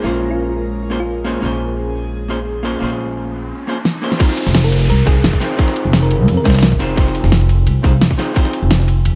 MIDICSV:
0, 0, Header, 1, 8, 480
1, 0, Start_track
1, 0, Tempo, 346821
1, 54, Time_signature, 4, 2, 24, 8
1, 12668, End_track
2, 0, Start_track
2, 0, Title_t, "Synth pluck"
2, 0, Program_c, 0, 84
2, 56, Note_on_c, 0, 65, 85
2, 345, Note_off_c, 0, 65, 0
2, 423, Note_on_c, 0, 65, 87
2, 775, Note_off_c, 0, 65, 0
2, 1383, Note_on_c, 0, 65, 85
2, 1862, Note_off_c, 0, 65, 0
2, 6425, Note_on_c, 0, 70, 95
2, 6708, Note_off_c, 0, 70, 0
2, 6775, Note_on_c, 0, 70, 92
2, 6992, Note_off_c, 0, 70, 0
2, 7016, Note_on_c, 0, 68, 95
2, 7495, Note_off_c, 0, 68, 0
2, 8340, Note_on_c, 0, 70, 97
2, 8693, Note_off_c, 0, 70, 0
2, 8818, Note_on_c, 0, 70, 98
2, 9299, Note_off_c, 0, 70, 0
2, 12668, End_track
3, 0, Start_track
3, 0, Title_t, "Hollow-body jazz guitar"
3, 0, Program_c, 1, 26
3, 27, Note_on_c, 1, 58, 86
3, 41, Note_on_c, 1, 61, 75
3, 55, Note_on_c, 1, 65, 76
3, 70, Note_on_c, 1, 68, 80
3, 86, Note_on_c, 1, 72, 94
3, 1213, Note_off_c, 1, 58, 0
3, 1220, Note_off_c, 1, 61, 0
3, 1227, Note_off_c, 1, 65, 0
3, 1235, Note_off_c, 1, 68, 0
3, 1243, Note_off_c, 1, 72, 0
3, 1243, Note_on_c, 1, 58, 77
3, 1250, Note_on_c, 1, 61, 68
3, 1257, Note_on_c, 1, 65, 70
3, 1264, Note_on_c, 1, 68, 68
3, 1271, Note_on_c, 1, 72, 84
3, 1364, Note_off_c, 1, 58, 0
3, 1367, Note_off_c, 1, 61, 0
3, 1371, Note_off_c, 1, 65, 0
3, 1374, Note_off_c, 1, 68, 0
3, 1378, Note_off_c, 1, 72, 0
3, 1722, Note_on_c, 1, 58, 91
3, 1729, Note_on_c, 1, 61, 79
3, 1737, Note_on_c, 1, 65, 82
3, 1745, Note_on_c, 1, 68, 82
3, 1751, Note_on_c, 1, 72, 98
3, 1931, Note_off_c, 1, 58, 0
3, 1944, Note_off_c, 1, 61, 0
3, 1947, Note_on_c, 1, 58, 85
3, 1948, Note_off_c, 1, 65, 0
3, 1952, Note_off_c, 1, 68, 0
3, 1955, Note_off_c, 1, 72, 0
3, 1961, Note_on_c, 1, 61, 79
3, 1976, Note_on_c, 1, 65, 77
3, 1993, Note_on_c, 1, 68, 74
3, 2006, Note_on_c, 1, 72, 95
3, 3133, Note_off_c, 1, 58, 0
3, 3140, Note_off_c, 1, 61, 0
3, 3148, Note_off_c, 1, 65, 0
3, 3156, Note_off_c, 1, 68, 0
3, 3160, Note_on_c, 1, 58, 73
3, 3163, Note_off_c, 1, 72, 0
3, 3173, Note_on_c, 1, 61, 62
3, 3178, Note_on_c, 1, 65, 72
3, 3184, Note_on_c, 1, 68, 71
3, 3190, Note_on_c, 1, 72, 88
3, 3284, Note_off_c, 1, 58, 0
3, 3286, Note_off_c, 1, 61, 0
3, 3291, Note_off_c, 1, 65, 0
3, 3294, Note_off_c, 1, 68, 0
3, 3298, Note_off_c, 1, 72, 0
3, 3637, Note_on_c, 1, 58, 89
3, 3646, Note_on_c, 1, 61, 85
3, 3657, Note_on_c, 1, 65, 72
3, 3661, Note_on_c, 1, 68, 82
3, 3669, Note_on_c, 1, 72, 98
3, 3847, Note_off_c, 1, 58, 0
3, 3863, Note_off_c, 1, 61, 0
3, 3863, Note_on_c, 1, 58, 85
3, 3866, Note_off_c, 1, 65, 0
3, 3870, Note_off_c, 1, 68, 0
3, 3874, Note_off_c, 1, 72, 0
3, 3879, Note_on_c, 1, 61, 75
3, 3893, Note_on_c, 1, 65, 76
3, 3908, Note_on_c, 1, 68, 82
3, 3923, Note_on_c, 1, 72, 91
3, 5051, Note_off_c, 1, 58, 0
3, 5059, Note_off_c, 1, 61, 0
3, 5066, Note_off_c, 1, 65, 0
3, 5074, Note_off_c, 1, 68, 0
3, 5081, Note_off_c, 1, 72, 0
3, 5082, Note_on_c, 1, 58, 80
3, 5090, Note_on_c, 1, 61, 72
3, 5096, Note_on_c, 1, 65, 70
3, 5103, Note_on_c, 1, 68, 69
3, 5111, Note_on_c, 1, 72, 88
3, 5203, Note_off_c, 1, 58, 0
3, 5207, Note_off_c, 1, 61, 0
3, 5210, Note_off_c, 1, 65, 0
3, 5214, Note_off_c, 1, 68, 0
3, 5218, Note_off_c, 1, 72, 0
3, 5560, Note_on_c, 1, 58, 91
3, 5568, Note_on_c, 1, 61, 84
3, 5574, Note_on_c, 1, 65, 86
3, 5581, Note_on_c, 1, 68, 84
3, 5589, Note_on_c, 1, 72, 102
3, 5778, Note_off_c, 1, 58, 0
3, 5783, Note_on_c, 1, 60, 96
3, 5784, Note_off_c, 1, 61, 0
3, 5787, Note_off_c, 1, 65, 0
3, 5790, Note_off_c, 1, 68, 0
3, 5794, Note_off_c, 1, 72, 0
3, 5797, Note_on_c, 1, 63, 83
3, 5814, Note_on_c, 1, 65, 87
3, 5830, Note_on_c, 1, 68, 84
3, 5844, Note_on_c, 1, 72, 97
3, 6971, Note_off_c, 1, 60, 0
3, 6978, Note_off_c, 1, 63, 0
3, 6987, Note_off_c, 1, 65, 0
3, 6995, Note_off_c, 1, 68, 0
3, 6998, Note_on_c, 1, 60, 83
3, 7002, Note_off_c, 1, 72, 0
3, 7006, Note_on_c, 1, 63, 77
3, 7013, Note_on_c, 1, 65, 78
3, 7022, Note_on_c, 1, 68, 80
3, 7029, Note_on_c, 1, 72, 95
3, 7121, Note_off_c, 1, 60, 0
3, 7125, Note_off_c, 1, 63, 0
3, 7129, Note_off_c, 1, 65, 0
3, 7133, Note_off_c, 1, 68, 0
3, 7137, Note_off_c, 1, 72, 0
3, 7477, Note_on_c, 1, 60, 102
3, 7485, Note_on_c, 1, 63, 90
3, 7491, Note_on_c, 1, 65, 92
3, 7499, Note_on_c, 1, 68, 91
3, 7506, Note_on_c, 1, 72, 110
3, 7687, Note_off_c, 1, 60, 0
3, 7702, Note_off_c, 1, 63, 0
3, 7704, Note_on_c, 1, 60, 93
3, 7705, Note_off_c, 1, 65, 0
3, 7709, Note_off_c, 1, 68, 0
3, 7712, Note_off_c, 1, 72, 0
3, 7718, Note_on_c, 1, 63, 88
3, 7733, Note_on_c, 1, 65, 90
3, 7749, Note_on_c, 1, 68, 85
3, 7764, Note_on_c, 1, 72, 102
3, 8892, Note_off_c, 1, 60, 0
3, 8899, Note_off_c, 1, 63, 0
3, 8906, Note_off_c, 1, 65, 0
3, 8914, Note_off_c, 1, 68, 0
3, 8915, Note_on_c, 1, 60, 88
3, 8922, Note_off_c, 1, 72, 0
3, 8923, Note_on_c, 1, 63, 75
3, 8929, Note_on_c, 1, 65, 77
3, 8939, Note_on_c, 1, 68, 76
3, 8945, Note_on_c, 1, 72, 95
3, 9040, Note_off_c, 1, 60, 0
3, 9044, Note_off_c, 1, 63, 0
3, 9047, Note_off_c, 1, 65, 0
3, 9052, Note_off_c, 1, 68, 0
3, 9055, Note_off_c, 1, 72, 0
3, 9401, Note_on_c, 1, 60, 101
3, 9407, Note_on_c, 1, 63, 94
3, 9416, Note_on_c, 1, 65, 91
3, 9423, Note_on_c, 1, 68, 94
3, 9431, Note_on_c, 1, 72, 111
3, 9606, Note_off_c, 1, 60, 0
3, 9620, Note_off_c, 1, 63, 0
3, 9623, Note_on_c, 1, 60, 93
3, 9628, Note_off_c, 1, 65, 0
3, 9631, Note_off_c, 1, 68, 0
3, 9635, Note_off_c, 1, 72, 0
3, 9637, Note_on_c, 1, 63, 88
3, 9653, Note_on_c, 1, 65, 91
3, 9667, Note_on_c, 1, 68, 84
3, 9682, Note_on_c, 1, 72, 98
3, 10811, Note_off_c, 1, 60, 0
3, 10818, Note_off_c, 1, 63, 0
3, 10826, Note_off_c, 1, 65, 0
3, 10833, Note_off_c, 1, 68, 0
3, 10838, Note_on_c, 1, 60, 86
3, 10841, Note_off_c, 1, 72, 0
3, 10844, Note_on_c, 1, 63, 78
3, 10852, Note_on_c, 1, 65, 81
3, 10859, Note_on_c, 1, 68, 80
3, 10868, Note_on_c, 1, 72, 92
3, 10961, Note_off_c, 1, 60, 0
3, 10964, Note_off_c, 1, 63, 0
3, 10968, Note_off_c, 1, 65, 0
3, 10972, Note_off_c, 1, 68, 0
3, 10976, Note_off_c, 1, 72, 0
3, 11316, Note_on_c, 1, 60, 100
3, 11323, Note_on_c, 1, 63, 97
3, 11332, Note_on_c, 1, 65, 92
3, 11340, Note_on_c, 1, 68, 93
3, 11348, Note_on_c, 1, 72, 110
3, 11526, Note_off_c, 1, 60, 0
3, 11541, Note_off_c, 1, 63, 0
3, 11542, Note_on_c, 1, 60, 96
3, 11546, Note_off_c, 1, 65, 0
3, 11550, Note_off_c, 1, 68, 0
3, 11553, Note_off_c, 1, 72, 0
3, 11557, Note_on_c, 1, 63, 85
3, 11572, Note_on_c, 1, 65, 83
3, 11586, Note_on_c, 1, 68, 86
3, 11602, Note_on_c, 1, 72, 104
3, 12668, Note_off_c, 1, 60, 0
3, 12668, Note_off_c, 1, 63, 0
3, 12668, Note_off_c, 1, 65, 0
3, 12668, Note_off_c, 1, 68, 0
3, 12668, Note_off_c, 1, 72, 0
3, 12668, End_track
4, 0, Start_track
4, 0, Title_t, "Analog synth pad"
4, 0, Program_c, 2, 89
4, 0, Note_on_c, 2, 56, 77
4, 0, Note_on_c, 2, 61, 74
4, 0, Note_on_c, 2, 70, 89
4, 1933, Note_off_c, 2, 70, 0
4, 1973, Note_on_c, 2, 68, 87
4, 4796, Note_off_c, 2, 56, 0
4, 4796, Note_off_c, 2, 61, 0
4, 4825, Note_off_c, 2, 68, 0
4, 12668, End_track
5, 0, Start_track
5, 0, Title_t, "Upright bass"
5, 0, Program_c, 3, 32
5, 55, Note_on_c, 3, 34, 76
5, 1952, Note_off_c, 3, 34, 0
5, 1973, Note_on_c, 3, 34, 79
5, 3871, Note_off_c, 3, 34, 0
5, 3892, Note_on_c, 3, 34, 79
5, 4853, Note_off_c, 3, 34, 0
5, 6181, Note_on_c, 3, 29, 107
5, 6756, Note_off_c, 3, 29, 0
5, 6774, Note_on_c, 3, 36, 96
5, 6991, Note_off_c, 3, 36, 0
5, 7013, Note_on_c, 3, 36, 86
5, 7231, Note_off_c, 3, 36, 0
5, 7256, Note_on_c, 3, 29, 87
5, 7369, Note_off_c, 3, 29, 0
5, 8100, Note_on_c, 3, 29, 105
5, 8692, Note_off_c, 3, 29, 0
5, 8692, Note_on_c, 3, 41, 92
5, 8932, Note_off_c, 3, 41, 0
5, 8932, Note_on_c, 3, 36, 85
5, 9411, Note_off_c, 3, 36, 0
5, 9411, Note_on_c, 3, 29, 86
5, 9999, Note_off_c, 3, 29, 0
5, 10016, Note_on_c, 3, 29, 106
5, 10594, Note_off_c, 3, 29, 0
5, 10613, Note_on_c, 3, 36, 96
5, 10831, Note_off_c, 3, 36, 0
5, 10851, Note_on_c, 3, 36, 90
5, 11070, Note_off_c, 3, 36, 0
5, 11091, Note_on_c, 3, 29, 86
5, 11207, Note_off_c, 3, 29, 0
5, 11937, Note_on_c, 3, 29, 102
5, 12531, Note_on_c, 3, 41, 86
5, 12552, Note_off_c, 3, 29, 0
5, 12668, Note_off_c, 3, 41, 0
5, 12668, End_track
6, 0, Start_track
6, 0, Title_t, "Downlifter"
6, 0, Program_c, 4, 103
6, 5815, Note_on_c, 4, 60, 78
6, 9654, Note_off_c, 4, 60, 0
6, 12668, End_track
7, 0, Start_track
7, 0, Title_t, "Riser"
7, 0, Program_c, 5, 103
7, 1973, Note_on_c, 5, 60, 72
7, 5814, Note_off_c, 5, 60, 0
7, 12668, End_track
8, 0, Start_track
8, 0, Title_t, "Drums"
8, 5332, Note_on_c, 9, 38, 107
8, 5470, Note_off_c, 9, 38, 0
8, 5700, Note_on_c, 9, 38, 68
8, 5813, Note_on_c, 9, 51, 91
8, 5814, Note_on_c, 9, 36, 126
8, 5814, Note_on_c, 9, 42, 84
8, 5838, Note_off_c, 9, 38, 0
8, 5940, Note_on_c, 9, 38, 38
8, 5951, Note_off_c, 9, 51, 0
8, 5952, Note_off_c, 9, 42, 0
8, 5953, Note_off_c, 9, 36, 0
8, 6052, Note_on_c, 9, 51, 72
8, 6055, Note_on_c, 9, 42, 99
8, 6079, Note_off_c, 9, 38, 0
8, 6180, Note_on_c, 9, 38, 55
8, 6191, Note_off_c, 9, 51, 0
8, 6194, Note_off_c, 9, 42, 0
8, 6292, Note_off_c, 9, 38, 0
8, 6292, Note_on_c, 9, 38, 111
8, 6292, Note_on_c, 9, 51, 85
8, 6294, Note_off_c, 9, 38, 0
8, 6294, Note_on_c, 9, 38, 121
8, 6294, Note_on_c, 9, 42, 89
8, 6419, Note_off_c, 9, 51, 0
8, 6419, Note_on_c, 9, 51, 43
8, 6433, Note_off_c, 9, 38, 0
8, 6433, Note_off_c, 9, 42, 0
8, 6534, Note_off_c, 9, 51, 0
8, 6534, Note_on_c, 9, 42, 93
8, 6534, Note_on_c, 9, 51, 73
8, 6672, Note_off_c, 9, 42, 0
8, 6672, Note_off_c, 9, 51, 0
8, 6773, Note_on_c, 9, 42, 80
8, 6775, Note_on_c, 9, 51, 91
8, 6912, Note_off_c, 9, 42, 0
8, 6914, Note_off_c, 9, 51, 0
8, 7012, Note_on_c, 9, 42, 100
8, 7013, Note_on_c, 9, 36, 107
8, 7016, Note_on_c, 9, 51, 67
8, 7151, Note_off_c, 9, 42, 0
8, 7152, Note_off_c, 9, 36, 0
8, 7154, Note_off_c, 9, 51, 0
8, 7255, Note_on_c, 9, 38, 121
8, 7255, Note_on_c, 9, 42, 88
8, 7256, Note_off_c, 9, 38, 0
8, 7256, Note_on_c, 9, 38, 117
8, 7256, Note_on_c, 9, 51, 87
8, 7380, Note_on_c, 9, 36, 62
8, 7383, Note_off_c, 9, 38, 0
8, 7383, Note_on_c, 9, 38, 49
8, 7393, Note_off_c, 9, 42, 0
8, 7395, Note_off_c, 9, 51, 0
8, 7494, Note_off_c, 9, 38, 0
8, 7494, Note_on_c, 9, 38, 37
8, 7494, Note_on_c, 9, 42, 95
8, 7496, Note_on_c, 9, 51, 66
8, 7518, Note_off_c, 9, 36, 0
8, 7633, Note_off_c, 9, 38, 0
8, 7633, Note_off_c, 9, 42, 0
8, 7635, Note_off_c, 9, 51, 0
8, 7733, Note_on_c, 9, 36, 127
8, 7734, Note_on_c, 9, 42, 87
8, 7736, Note_on_c, 9, 51, 93
8, 7861, Note_on_c, 9, 38, 53
8, 7871, Note_off_c, 9, 36, 0
8, 7872, Note_off_c, 9, 42, 0
8, 7875, Note_off_c, 9, 51, 0
8, 7973, Note_on_c, 9, 42, 100
8, 7974, Note_on_c, 9, 51, 68
8, 7999, Note_off_c, 9, 38, 0
8, 8112, Note_off_c, 9, 42, 0
8, 8112, Note_off_c, 9, 51, 0
8, 8211, Note_on_c, 9, 38, 119
8, 8211, Note_on_c, 9, 51, 86
8, 8212, Note_off_c, 9, 38, 0
8, 8212, Note_on_c, 9, 38, 124
8, 8212, Note_on_c, 9, 42, 83
8, 8340, Note_off_c, 9, 38, 0
8, 8340, Note_on_c, 9, 38, 37
8, 8350, Note_off_c, 9, 42, 0
8, 8350, Note_off_c, 9, 51, 0
8, 8452, Note_on_c, 9, 42, 94
8, 8454, Note_on_c, 9, 51, 72
8, 8479, Note_off_c, 9, 38, 0
8, 8590, Note_off_c, 9, 42, 0
8, 8592, Note_off_c, 9, 51, 0
8, 8692, Note_on_c, 9, 42, 86
8, 8693, Note_on_c, 9, 51, 87
8, 8830, Note_off_c, 9, 42, 0
8, 8831, Note_off_c, 9, 51, 0
8, 8931, Note_on_c, 9, 42, 99
8, 8932, Note_on_c, 9, 36, 106
8, 8933, Note_on_c, 9, 38, 88
8, 8933, Note_on_c, 9, 51, 69
8, 8996, Note_off_c, 9, 38, 0
8, 8996, Note_off_c, 9, 51, 0
8, 8996, Note_on_c, 9, 38, 91
8, 8996, Note_on_c, 9, 51, 68
8, 9059, Note_off_c, 9, 38, 0
8, 9059, Note_off_c, 9, 51, 0
8, 9059, Note_on_c, 9, 38, 91
8, 9059, Note_on_c, 9, 51, 70
8, 9069, Note_off_c, 9, 42, 0
8, 9071, Note_off_c, 9, 36, 0
8, 9115, Note_off_c, 9, 38, 0
8, 9115, Note_off_c, 9, 51, 0
8, 9115, Note_on_c, 9, 38, 89
8, 9115, Note_on_c, 9, 51, 70
8, 9171, Note_off_c, 9, 38, 0
8, 9171, Note_off_c, 9, 51, 0
8, 9171, Note_on_c, 9, 38, 117
8, 9171, Note_on_c, 9, 51, 88
8, 9172, Note_off_c, 9, 38, 0
8, 9172, Note_on_c, 9, 38, 127
8, 9172, Note_on_c, 9, 42, 88
8, 9299, Note_on_c, 9, 36, 64
8, 9309, Note_off_c, 9, 51, 0
8, 9311, Note_off_c, 9, 38, 0
8, 9311, Note_off_c, 9, 42, 0
8, 9411, Note_on_c, 9, 42, 97
8, 9412, Note_on_c, 9, 51, 72
8, 9437, Note_off_c, 9, 36, 0
8, 9550, Note_off_c, 9, 42, 0
8, 9550, Note_off_c, 9, 51, 0
8, 9651, Note_on_c, 9, 36, 127
8, 9652, Note_on_c, 9, 42, 83
8, 9652, Note_on_c, 9, 51, 91
8, 9781, Note_on_c, 9, 38, 41
8, 9790, Note_off_c, 9, 36, 0
8, 9790, Note_off_c, 9, 51, 0
8, 9791, Note_off_c, 9, 42, 0
8, 9891, Note_on_c, 9, 42, 95
8, 9893, Note_on_c, 9, 51, 71
8, 9919, Note_off_c, 9, 38, 0
8, 10020, Note_on_c, 9, 38, 56
8, 10030, Note_off_c, 9, 42, 0
8, 10032, Note_off_c, 9, 51, 0
8, 10131, Note_off_c, 9, 38, 0
8, 10131, Note_on_c, 9, 38, 124
8, 10131, Note_on_c, 9, 42, 82
8, 10132, Note_off_c, 9, 38, 0
8, 10132, Note_on_c, 9, 38, 116
8, 10132, Note_on_c, 9, 51, 85
8, 10258, Note_off_c, 9, 51, 0
8, 10258, Note_on_c, 9, 51, 43
8, 10270, Note_off_c, 9, 38, 0
8, 10270, Note_off_c, 9, 42, 0
8, 10370, Note_off_c, 9, 51, 0
8, 10370, Note_on_c, 9, 42, 92
8, 10370, Note_on_c, 9, 51, 69
8, 10508, Note_off_c, 9, 42, 0
8, 10509, Note_off_c, 9, 51, 0
8, 10610, Note_on_c, 9, 42, 84
8, 10613, Note_on_c, 9, 51, 87
8, 10749, Note_off_c, 9, 42, 0
8, 10751, Note_off_c, 9, 51, 0
8, 10851, Note_on_c, 9, 36, 116
8, 10851, Note_on_c, 9, 42, 96
8, 10852, Note_on_c, 9, 51, 69
8, 10989, Note_off_c, 9, 36, 0
8, 10989, Note_off_c, 9, 42, 0
8, 10990, Note_off_c, 9, 51, 0
8, 11092, Note_on_c, 9, 38, 127
8, 11092, Note_on_c, 9, 42, 84
8, 11092, Note_on_c, 9, 51, 85
8, 11218, Note_on_c, 9, 36, 65
8, 11220, Note_off_c, 9, 38, 0
8, 11220, Note_on_c, 9, 38, 50
8, 11231, Note_off_c, 9, 42, 0
8, 11231, Note_off_c, 9, 51, 0
8, 11332, Note_on_c, 9, 51, 69
8, 11334, Note_off_c, 9, 38, 0
8, 11334, Note_on_c, 9, 38, 39
8, 11334, Note_on_c, 9, 42, 90
8, 11356, Note_off_c, 9, 36, 0
8, 11471, Note_off_c, 9, 51, 0
8, 11472, Note_off_c, 9, 38, 0
8, 11472, Note_off_c, 9, 42, 0
8, 11571, Note_on_c, 9, 36, 127
8, 11572, Note_on_c, 9, 51, 90
8, 11575, Note_on_c, 9, 42, 78
8, 11699, Note_on_c, 9, 38, 52
8, 11709, Note_off_c, 9, 36, 0
8, 11710, Note_off_c, 9, 51, 0
8, 11713, Note_off_c, 9, 42, 0
8, 11810, Note_on_c, 9, 51, 70
8, 11812, Note_on_c, 9, 42, 95
8, 11837, Note_off_c, 9, 38, 0
8, 11948, Note_off_c, 9, 51, 0
8, 11950, Note_off_c, 9, 42, 0
8, 12050, Note_on_c, 9, 38, 114
8, 12050, Note_on_c, 9, 51, 89
8, 12052, Note_off_c, 9, 38, 0
8, 12052, Note_on_c, 9, 38, 127
8, 12052, Note_on_c, 9, 42, 80
8, 12177, Note_off_c, 9, 38, 0
8, 12177, Note_on_c, 9, 38, 36
8, 12188, Note_off_c, 9, 51, 0
8, 12190, Note_off_c, 9, 42, 0
8, 12290, Note_on_c, 9, 42, 90
8, 12290, Note_on_c, 9, 51, 74
8, 12315, Note_off_c, 9, 38, 0
8, 12428, Note_off_c, 9, 51, 0
8, 12429, Note_off_c, 9, 42, 0
8, 12529, Note_on_c, 9, 51, 92
8, 12530, Note_on_c, 9, 42, 82
8, 12668, Note_off_c, 9, 42, 0
8, 12668, Note_off_c, 9, 51, 0
8, 12668, End_track
0, 0, End_of_file